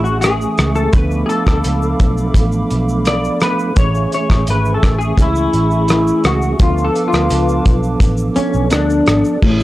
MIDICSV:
0, 0, Header, 1, 7, 480
1, 0, Start_track
1, 0, Tempo, 706880
1, 638, Time_signature, 4, 2, 24, 8
1, 6541, End_track
2, 0, Start_track
2, 0, Title_t, "Analog synth pad"
2, 0, Program_c, 0, 89
2, 0, Note_on_c, 0, 57, 82
2, 0, Note_on_c, 0, 76, 76
2, 0, Note_on_c, 0, 80, 75
2, 0, Note_on_c, 0, 85, 88
2, 620, Note_off_c, 0, 76, 0
2, 621, Note_off_c, 0, 80, 0
2, 621, Note_off_c, 0, 85, 0
2, 633, Note_on_c, 0, 77, 78
2, 636, Note_on_c, 0, 83, 71
2, 638, Note_on_c, 0, 86, 87
2, 2536, Note_off_c, 0, 77, 0
2, 2537, Note_off_c, 0, 83, 0
2, 2539, Note_off_c, 0, 86, 0
2, 2560, Note_on_c, 0, 76, 75
2, 2565, Note_on_c, 0, 80, 76
2, 2566, Note_on_c, 0, 85, 88
2, 4450, Note_off_c, 0, 57, 0
2, 4460, Note_off_c, 0, 76, 0
2, 4462, Note_off_c, 0, 80, 0
2, 4462, Note_off_c, 0, 85, 0
2, 4476, Note_on_c, 0, 86, 88
2, 4477, Note_on_c, 0, 77, 76
2, 4479, Note_on_c, 0, 81, 69
2, 4480, Note_on_c, 0, 71, 77
2, 6377, Note_off_c, 0, 86, 0
2, 6378, Note_off_c, 0, 77, 0
2, 6379, Note_off_c, 0, 81, 0
2, 6380, Note_off_c, 0, 71, 0
2, 6541, End_track
3, 0, Start_track
3, 0, Title_t, "Clean electric guitar"
3, 0, Program_c, 1, 27
3, 27, Note_on_c, 1, 66, 81
3, 141, Note_off_c, 1, 66, 0
3, 144, Note_on_c, 1, 68, 92
3, 510, Note_off_c, 1, 68, 0
3, 513, Note_on_c, 1, 69, 94
3, 629, Note_off_c, 1, 69, 0
3, 629, Note_on_c, 1, 71, 100
3, 850, Note_off_c, 1, 71, 0
3, 855, Note_on_c, 1, 68, 70
3, 874, Note_off_c, 1, 68, 0
3, 876, Note_on_c, 1, 69, 103
3, 986, Note_off_c, 1, 69, 0
3, 994, Note_on_c, 1, 69, 85
3, 1689, Note_off_c, 1, 69, 0
3, 2086, Note_on_c, 1, 74, 114
3, 2305, Note_off_c, 1, 74, 0
3, 2325, Note_on_c, 1, 71, 96
3, 2568, Note_off_c, 1, 71, 0
3, 2571, Note_on_c, 1, 73, 104
3, 2807, Note_off_c, 1, 73, 0
3, 2815, Note_on_c, 1, 73, 100
3, 3053, Note_off_c, 1, 73, 0
3, 3058, Note_on_c, 1, 71, 97
3, 3212, Note_off_c, 1, 71, 0
3, 3221, Note_on_c, 1, 69, 82
3, 3359, Note_off_c, 1, 69, 0
3, 3384, Note_on_c, 1, 68, 89
3, 3535, Note_off_c, 1, 68, 0
3, 3543, Note_on_c, 1, 64, 91
3, 4223, Note_off_c, 1, 64, 0
3, 4254, Note_on_c, 1, 66, 82
3, 4469, Note_off_c, 1, 66, 0
3, 4493, Note_on_c, 1, 65, 91
3, 4648, Note_on_c, 1, 69, 89
3, 4650, Note_off_c, 1, 65, 0
3, 4807, Note_on_c, 1, 65, 79
3, 4808, Note_off_c, 1, 69, 0
3, 5255, Note_off_c, 1, 65, 0
3, 5675, Note_on_c, 1, 61, 100
3, 5915, Note_off_c, 1, 61, 0
3, 5918, Note_on_c, 1, 62, 114
3, 6371, Note_off_c, 1, 62, 0
3, 6398, Note_on_c, 1, 45, 73
3, 6520, Note_on_c, 1, 56, 59
3, 6541, Note_off_c, 1, 45, 0
3, 6541, Note_off_c, 1, 56, 0
3, 6541, End_track
4, 0, Start_track
4, 0, Title_t, "Tonewheel organ"
4, 0, Program_c, 2, 16
4, 0, Note_on_c, 2, 52, 64
4, 0, Note_on_c, 2, 57, 58
4, 0, Note_on_c, 2, 61, 59
4, 0, Note_on_c, 2, 68, 66
4, 602, Note_off_c, 2, 52, 0
4, 606, Note_off_c, 2, 57, 0
4, 612, Note_off_c, 2, 61, 0
4, 619, Note_off_c, 2, 68, 0
4, 621, Note_on_c, 2, 53, 62
4, 634, Note_on_c, 2, 59, 56
4, 641, Note_on_c, 2, 62, 56
4, 656, Note_on_c, 2, 69, 70
4, 2522, Note_off_c, 2, 53, 0
4, 2529, Note_off_c, 2, 59, 0
4, 2532, Note_off_c, 2, 62, 0
4, 2539, Note_off_c, 2, 69, 0
4, 2543, Note_on_c, 2, 52, 68
4, 2551, Note_on_c, 2, 57, 58
4, 2563, Note_on_c, 2, 61, 55
4, 2574, Note_on_c, 2, 68, 74
4, 4443, Note_off_c, 2, 52, 0
4, 4447, Note_off_c, 2, 57, 0
4, 4453, Note_off_c, 2, 61, 0
4, 4459, Note_off_c, 2, 68, 0
4, 4469, Note_on_c, 2, 53, 65
4, 4479, Note_on_c, 2, 59, 57
4, 4494, Note_on_c, 2, 62, 55
4, 4503, Note_on_c, 2, 69, 73
4, 6366, Note_off_c, 2, 53, 0
4, 6371, Note_off_c, 2, 59, 0
4, 6379, Note_off_c, 2, 62, 0
4, 6383, Note_off_c, 2, 69, 0
4, 6384, Note_on_c, 2, 68, 62
4, 6394, Note_on_c, 2, 61, 59
4, 6406, Note_on_c, 2, 64, 57
4, 6418, Note_on_c, 2, 57, 67
4, 6541, Note_off_c, 2, 57, 0
4, 6541, Note_off_c, 2, 61, 0
4, 6541, Note_off_c, 2, 64, 0
4, 6541, Note_off_c, 2, 68, 0
4, 6541, End_track
5, 0, Start_track
5, 0, Title_t, "Picked electric bass"
5, 0, Program_c, 3, 34
5, 0, Note_on_c, 3, 33, 93
5, 302, Note_off_c, 3, 33, 0
5, 398, Note_on_c, 3, 37, 88
5, 590, Note_off_c, 3, 37, 0
5, 635, Note_on_c, 3, 38, 101
5, 828, Note_off_c, 3, 38, 0
5, 998, Note_on_c, 3, 38, 95
5, 1094, Note_off_c, 3, 38, 0
5, 1121, Note_on_c, 3, 37, 83
5, 1312, Note_off_c, 3, 37, 0
5, 1361, Note_on_c, 3, 35, 94
5, 1552, Note_off_c, 3, 35, 0
5, 1591, Note_on_c, 3, 33, 94
5, 1786, Note_off_c, 3, 33, 0
5, 1844, Note_on_c, 3, 35, 94
5, 2225, Note_off_c, 3, 35, 0
5, 2559, Note_on_c, 3, 33, 101
5, 2751, Note_off_c, 3, 33, 0
5, 2920, Note_on_c, 3, 33, 102
5, 3015, Note_off_c, 3, 33, 0
5, 3045, Note_on_c, 3, 32, 100
5, 3234, Note_off_c, 3, 32, 0
5, 3282, Note_on_c, 3, 33, 84
5, 3472, Note_off_c, 3, 33, 0
5, 3517, Note_on_c, 3, 37, 92
5, 3709, Note_off_c, 3, 37, 0
5, 3761, Note_on_c, 3, 33, 97
5, 4144, Note_off_c, 3, 33, 0
5, 4243, Note_on_c, 3, 37, 86
5, 4433, Note_off_c, 3, 37, 0
5, 4480, Note_on_c, 3, 38, 105
5, 4671, Note_off_c, 3, 38, 0
5, 4846, Note_on_c, 3, 38, 104
5, 4939, Note_off_c, 3, 38, 0
5, 4964, Note_on_c, 3, 37, 88
5, 5154, Note_off_c, 3, 37, 0
5, 5202, Note_on_c, 3, 35, 88
5, 5392, Note_off_c, 3, 35, 0
5, 5434, Note_on_c, 3, 33, 94
5, 5628, Note_off_c, 3, 33, 0
5, 5803, Note_on_c, 3, 35, 92
5, 5897, Note_off_c, 3, 35, 0
5, 5922, Note_on_c, 3, 38, 97
5, 6113, Note_off_c, 3, 38, 0
5, 6161, Note_on_c, 3, 32, 85
5, 6256, Note_off_c, 3, 32, 0
5, 6401, Note_on_c, 3, 33, 106
5, 6541, Note_off_c, 3, 33, 0
5, 6541, End_track
6, 0, Start_track
6, 0, Title_t, "Muted picked electric bass strokes"
6, 5686, Note_on_c, 9, 29, 52
6, 5754, Note_off_c, 9, 29, 0
6, 6541, End_track
7, 0, Start_track
7, 0, Title_t, "Drums"
7, 34, Note_on_c, 9, 82, 46
7, 40, Note_off_c, 9, 82, 0
7, 40, Note_on_c, 9, 82, 47
7, 108, Note_off_c, 9, 82, 0
7, 148, Note_on_c, 9, 42, 74
7, 148, Note_on_c, 9, 82, 72
7, 159, Note_off_c, 9, 82, 0
7, 159, Note_on_c, 9, 82, 64
7, 163, Note_on_c, 9, 37, 83
7, 216, Note_off_c, 9, 42, 0
7, 226, Note_off_c, 9, 82, 0
7, 231, Note_off_c, 9, 37, 0
7, 280, Note_on_c, 9, 82, 50
7, 282, Note_off_c, 9, 82, 0
7, 282, Note_on_c, 9, 82, 52
7, 350, Note_off_c, 9, 82, 0
7, 391, Note_on_c, 9, 42, 43
7, 391, Note_on_c, 9, 82, 43
7, 397, Note_off_c, 9, 82, 0
7, 397, Note_on_c, 9, 82, 47
7, 399, Note_on_c, 9, 37, 90
7, 459, Note_off_c, 9, 42, 0
7, 465, Note_off_c, 9, 82, 0
7, 467, Note_off_c, 9, 37, 0
7, 510, Note_on_c, 9, 82, 46
7, 516, Note_off_c, 9, 82, 0
7, 516, Note_on_c, 9, 82, 44
7, 584, Note_off_c, 9, 82, 0
7, 630, Note_on_c, 9, 42, 72
7, 630, Note_on_c, 9, 82, 64
7, 632, Note_off_c, 9, 82, 0
7, 632, Note_on_c, 9, 82, 64
7, 634, Note_on_c, 9, 36, 111
7, 698, Note_off_c, 9, 42, 0
7, 700, Note_off_c, 9, 82, 0
7, 702, Note_off_c, 9, 36, 0
7, 754, Note_on_c, 9, 82, 42
7, 756, Note_off_c, 9, 82, 0
7, 756, Note_on_c, 9, 82, 47
7, 824, Note_off_c, 9, 82, 0
7, 877, Note_on_c, 9, 82, 46
7, 880, Note_off_c, 9, 82, 0
7, 880, Note_on_c, 9, 42, 45
7, 880, Note_on_c, 9, 82, 48
7, 948, Note_off_c, 9, 42, 0
7, 948, Note_off_c, 9, 82, 0
7, 995, Note_on_c, 9, 82, 40
7, 996, Note_off_c, 9, 82, 0
7, 996, Note_on_c, 9, 36, 74
7, 996, Note_on_c, 9, 82, 47
7, 1004, Note_on_c, 9, 37, 78
7, 1064, Note_off_c, 9, 36, 0
7, 1064, Note_off_c, 9, 82, 0
7, 1072, Note_off_c, 9, 37, 0
7, 1112, Note_on_c, 9, 82, 67
7, 1116, Note_off_c, 9, 82, 0
7, 1116, Note_on_c, 9, 42, 78
7, 1116, Note_on_c, 9, 82, 78
7, 1183, Note_off_c, 9, 42, 0
7, 1183, Note_off_c, 9, 82, 0
7, 1236, Note_on_c, 9, 82, 51
7, 1240, Note_off_c, 9, 82, 0
7, 1240, Note_on_c, 9, 82, 47
7, 1308, Note_off_c, 9, 82, 0
7, 1356, Note_on_c, 9, 42, 50
7, 1356, Note_on_c, 9, 82, 46
7, 1358, Note_on_c, 9, 36, 86
7, 1360, Note_off_c, 9, 82, 0
7, 1360, Note_on_c, 9, 82, 49
7, 1424, Note_off_c, 9, 42, 0
7, 1425, Note_off_c, 9, 36, 0
7, 1428, Note_off_c, 9, 82, 0
7, 1477, Note_on_c, 9, 82, 50
7, 1480, Note_off_c, 9, 82, 0
7, 1480, Note_on_c, 9, 82, 45
7, 1547, Note_off_c, 9, 82, 0
7, 1592, Note_on_c, 9, 36, 85
7, 1596, Note_on_c, 9, 82, 68
7, 1598, Note_off_c, 9, 82, 0
7, 1598, Note_on_c, 9, 42, 72
7, 1598, Note_on_c, 9, 82, 79
7, 1659, Note_off_c, 9, 36, 0
7, 1666, Note_off_c, 9, 42, 0
7, 1666, Note_off_c, 9, 82, 0
7, 1711, Note_on_c, 9, 82, 54
7, 1714, Note_off_c, 9, 82, 0
7, 1714, Note_on_c, 9, 82, 52
7, 1782, Note_off_c, 9, 82, 0
7, 1836, Note_on_c, 9, 82, 48
7, 1837, Note_off_c, 9, 82, 0
7, 1837, Note_on_c, 9, 42, 57
7, 1837, Note_on_c, 9, 82, 53
7, 1905, Note_off_c, 9, 42, 0
7, 1905, Note_off_c, 9, 82, 0
7, 1958, Note_on_c, 9, 82, 47
7, 1961, Note_off_c, 9, 82, 0
7, 1961, Note_on_c, 9, 82, 45
7, 2029, Note_off_c, 9, 82, 0
7, 2073, Note_on_c, 9, 42, 74
7, 2073, Note_on_c, 9, 82, 75
7, 2077, Note_off_c, 9, 82, 0
7, 2077, Note_on_c, 9, 82, 62
7, 2088, Note_on_c, 9, 37, 90
7, 2141, Note_off_c, 9, 42, 0
7, 2145, Note_off_c, 9, 82, 0
7, 2156, Note_off_c, 9, 37, 0
7, 2202, Note_on_c, 9, 82, 58
7, 2270, Note_off_c, 9, 82, 0
7, 2312, Note_on_c, 9, 42, 47
7, 2312, Note_on_c, 9, 82, 45
7, 2319, Note_off_c, 9, 82, 0
7, 2319, Note_on_c, 9, 82, 48
7, 2320, Note_on_c, 9, 37, 90
7, 2380, Note_off_c, 9, 42, 0
7, 2387, Note_off_c, 9, 82, 0
7, 2388, Note_off_c, 9, 37, 0
7, 2438, Note_on_c, 9, 82, 46
7, 2441, Note_off_c, 9, 82, 0
7, 2441, Note_on_c, 9, 82, 41
7, 2509, Note_off_c, 9, 82, 0
7, 2554, Note_on_c, 9, 42, 68
7, 2554, Note_on_c, 9, 82, 68
7, 2558, Note_off_c, 9, 82, 0
7, 2558, Note_on_c, 9, 36, 115
7, 2558, Note_on_c, 9, 82, 68
7, 2622, Note_off_c, 9, 42, 0
7, 2626, Note_off_c, 9, 36, 0
7, 2626, Note_off_c, 9, 82, 0
7, 2679, Note_on_c, 9, 82, 41
7, 2747, Note_off_c, 9, 82, 0
7, 2799, Note_on_c, 9, 42, 50
7, 2799, Note_on_c, 9, 82, 45
7, 2800, Note_off_c, 9, 82, 0
7, 2800, Note_on_c, 9, 82, 45
7, 2867, Note_off_c, 9, 42, 0
7, 2868, Note_off_c, 9, 82, 0
7, 2919, Note_on_c, 9, 36, 83
7, 2920, Note_on_c, 9, 82, 42
7, 2921, Note_off_c, 9, 82, 0
7, 2921, Note_on_c, 9, 82, 48
7, 2928, Note_on_c, 9, 37, 88
7, 2987, Note_off_c, 9, 36, 0
7, 2989, Note_off_c, 9, 82, 0
7, 2996, Note_off_c, 9, 37, 0
7, 3035, Note_on_c, 9, 42, 84
7, 3035, Note_on_c, 9, 82, 78
7, 3036, Note_off_c, 9, 82, 0
7, 3036, Note_on_c, 9, 82, 62
7, 3103, Note_off_c, 9, 42, 0
7, 3104, Note_off_c, 9, 82, 0
7, 3158, Note_on_c, 9, 82, 53
7, 3161, Note_off_c, 9, 82, 0
7, 3161, Note_on_c, 9, 82, 47
7, 3228, Note_off_c, 9, 82, 0
7, 3280, Note_on_c, 9, 36, 93
7, 3280, Note_on_c, 9, 42, 49
7, 3280, Note_on_c, 9, 82, 51
7, 3284, Note_off_c, 9, 82, 0
7, 3284, Note_on_c, 9, 82, 46
7, 3286, Note_on_c, 9, 37, 92
7, 3348, Note_off_c, 9, 36, 0
7, 3348, Note_off_c, 9, 42, 0
7, 3352, Note_off_c, 9, 82, 0
7, 3354, Note_off_c, 9, 37, 0
7, 3400, Note_on_c, 9, 82, 50
7, 3404, Note_off_c, 9, 82, 0
7, 3404, Note_on_c, 9, 82, 47
7, 3471, Note_off_c, 9, 82, 0
7, 3514, Note_on_c, 9, 36, 89
7, 3518, Note_on_c, 9, 42, 81
7, 3518, Note_on_c, 9, 82, 77
7, 3524, Note_off_c, 9, 82, 0
7, 3524, Note_on_c, 9, 82, 69
7, 3582, Note_off_c, 9, 36, 0
7, 3586, Note_off_c, 9, 42, 0
7, 3592, Note_off_c, 9, 82, 0
7, 3636, Note_on_c, 9, 82, 55
7, 3642, Note_off_c, 9, 82, 0
7, 3642, Note_on_c, 9, 82, 53
7, 3710, Note_off_c, 9, 82, 0
7, 3758, Note_on_c, 9, 42, 56
7, 3758, Note_on_c, 9, 82, 49
7, 3826, Note_off_c, 9, 42, 0
7, 3826, Note_off_c, 9, 82, 0
7, 3877, Note_on_c, 9, 82, 45
7, 3881, Note_off_c, 9, 82, 0
7, 3881, Note_on_c, 9, 82, 44
7, 3949, Note_off_c, 9, 82, 0
7, 3994, Note_on_c, 9, 42, 76
7, 3994, Note_on_c, 9, 82, 74
7, 4000, Note_off_c, 9, 82, 0
7, 4000, Note_on_c, 9, 82, 63
7, 4009, Note_on_c, 9, 37, 89
7, 4062, Note_off_c, 9, 42, 0
7, 4068, Note_off_c, 9, 82, 0
7, 4076, Note_off_c, 9, 37, 0
7, 4123, Note_on_c, 9, 82, 53
7, 4126, Note_off_c, 9, 82, 0
7, 4126, Note_on_c, 9, 82, 50
7, 4194, Note_off_c, 9, 82, 0
7, 4236, Note_on_c, 9, 42, 44
7, 4236, Note_on_c, 9, 82, 48
7, 4244, Note_off_c, 9, 82, 0
7, 4244, Note_on_c, 9, 37, 97
7, 4244, Note_on_c, 9, 82, 47
7, 4304, Note_off_c, 9, 42, 0
7, 4312, Note_off_c, 9, 37, 0
7, 4312, Note_off_c, 9, 82, 0
7, 4358, Note_on_c, 9, 82, 49
7, 4359, Note_off_c, 9, 82, 0
7, 4359, Note_on_c, 9, 82, 44
7, 4427, Note_off_c, 9, 82, 0
7, 4476, Note_on_c, 9, 82, 64
7, 4478, Note_off_c, 9, 82, 0
7, 4478, Note_on_c, 9, 42, 70
7, 4478, Note_on_c, 9, 82, 67
7, 4480, Note_on_c, 9, 36, 119
7, 4546, Note_off_c, 9, 42, 0
7, 4546, Note_off_c, 9, 82, 0
7, 4548, Note_off_c, 9, 36, 0
7, 4601, Note_on_c, 9, 82, 44
7, 4604, Note_off_c, 9, 82, 0
7, 4604, Note_on_c, 9, 82, 41
7, 4672, Note_off_c, 9, 82, 0
7, 4723, Note_on_c, 9, 42, 49
7, 4723, Note_on_c, 9, 82, 47
7, 4791, Note_off_c, 9, 42, 0
7, 4791, Note_off_c, 9, 82, 0
7, 4836, Note_on_c, 9, 82, 40
7, 4842, Note_off_c, 9, 82, 0
7, 4842, Note_on_c, 9, 82, 47
7, 4850, Note_on_c, 9, 37, 78
7, 4910, Note_off_c, 9, 82, 0
7, 4917, Note_off_c, 9, 37, 0
7, 4954, Note_on_c, 9, 82, 62
7, 4960, Note_off_c, 9, 82, 0
7, 4960, Note_on_c, 9, 42, 82
7, 4960, Note_on_c, 9, 82, 80
7, 5028, Note_off_c, 9, 42, 0
7, 5028, Note_off_c, 9, 82, 0
7, 5080, Note_on_c, 9, 82, 52
7, 5085, Note_off_c, 9, 82, 0
7, 5085, Note_on_c, 9, 82, 48
7, 5153, Note_off_c, 9, 82, 0
7, 5198, Note_on_c, 9, 42, 52
7, 5198, Note_on_c, 9, 82, 49
7, 5200, Note_on_c, 9, 36, 93
7, 5266, Note_off_c, 9, 42, 0
7, 5266, Note_off_c, 9, 82, 0
7, 5268, Note_off_c, 9, 36, 0
7, 5319, Note_on_c, 9, 82, 54
7, 5325, Note_off_c, 9, 82, 0
7, 5325, Note_on_c, 9, 82, 44
7, 5393, Note_off_c, 9, 82, 0
7, 5433, Note_on_c, 9, 36, 100
7, 5437, Note_on_c, 9, 42, 76
7, 5437, Note_on_c, 9, 82, 79
7, 5444, Note_off_c, 9, 82, 0
7, 5444, Note_on_c, 9, 82, 74
7, 5501, Note_off_c, 9, 36, 0
7, 5505, Note_off_c, 9, 42, 0
7, 5512, Note_off_c, 9, 82, 0
7, 5550, Note_on_c, 9, 82, 57
7, 5563, Note_off_c, 9, 82, 0
7, 5563, Note_on_c, 9, 82, 57
7, 5631, Note_off_c, 9, 82, 0
7, 5676, Note_on_c, 9, 42, 58
7, 5676, Note_on_c, 9, 82, 51
7, 5685, Note_off_c, 9, 82, 0
7, 5685, Note_on_c, 9, 82, 48
7, 5744, Note_off_c, 9, 42, 0
7, 5753, Note_off_c, 9, 82, 0
7, 5795, Note_on_c, 9, 82, 48
7, 5806, Note_off_c, 9, 82, 0
7, 5806, Note_on_c, 9, 82, 45
7, 5874, Note_off_c, 9, 82, 0
7, 5911, Note_on_c, 9, 42, 74
7, 5911, Note_on_c, 9, 82, 77
7, 5923, Note_off_c, 9, 82, 0
7, 5923, Note_on_c, 9, 82, 65
7, 5925, Note_on_c, 9, 37, 92
7, 5979, Note_off_c, 9, 42, 0
7, 5991, Note_off_c, 9, 82, 0
7, 5993, Note_off_c, 9, 37, 0
7, 6043, Note_on_c, 9, 82, 57
7, 6046, Note_off_c, 9, 82, 0
7, 6046, Note_on_c, 9, 82, 56
7, 6114, Note_off_c, 9, 82, 0
7, 6155, Note_on_c, 9, 42, 45
7, 6155, Note_on_c, 9, 82, 45
7, 6163, Note_on_c, 9, 37, 94
7, 6168, Note_off_c, 9, 82, 0
7, 6168, Note_on_c, 9, 82, 44
7, 6223, Note_off_c, 9, 42, 0
7, 6231, Note_off_c, 9, 37, 0
7, 6235, Note_off_c, 9, 82, 0
7, 6278, Note_on_c, 9, 82, 49
7, 6285, Note_off_c, 9, 82, 0
7, 6285, Note_on_c, 9, 82, 43
7, 6352, Note_off_c, 9, 82, 0
7, 6400, Note_on_c, 9, 36, 110
7, 6400, Note_on_c, 9, 49, 89
7, 6468, Note_off_c, 9, 36, 0
7, 6468, Note_off_c, 9, 49, 0
7, 6520, Note_on_c, 9, 82, 41
7, 6541, Note_off_c, 9, 82, 0
7, 6541, End_track
0, 0, End_of_file